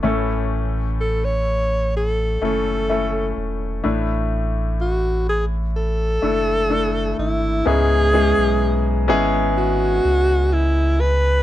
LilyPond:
<<
  \new Staff \with { instrumentName = "Alto saxophone" } { \time 4/4 \key cis \phrygian \tempo 4 = 63 r4 a'16 cis''8. a'8 a'4 r8 | r4 fis'8 gis'8 a'4. e'8 | gis'4. r8 fis'4 e'8 b'8 | }
  \new Staff \with { instrumentName = "Grand piano" } { \time 4/4 \key cis \phrygian <a cis' e' a'>2 r8 <a cis' e' a'>8 <a cis' e' a'>4 | <a d' e'>2 r8 <a d' e' a'>8 <a d' e' a'>4 | <gis b cis' e' gis'>8 <gis b cis' e' gis'>4 <gis b cis' e' gis'>2 r8 | }
  \new Staff \with { instrumentName = "Grand piano" } { \clef bass \time 4/4 \key cis \phrygian <a, e>4. r2 r8 | a,4. r2 r8 | gis,4. r2 r8 | }
  \new Staff \with { instrumentName = "Sub bass" } { \clef bass \time 4/4 \key cis \phrygian a,,2~ a,,8 fis,,4 e,,8 | a,,2~ a,,8 fis,,4 gis,,8 | cis,8. b,,8. gis,,4 cis,4. | }
>>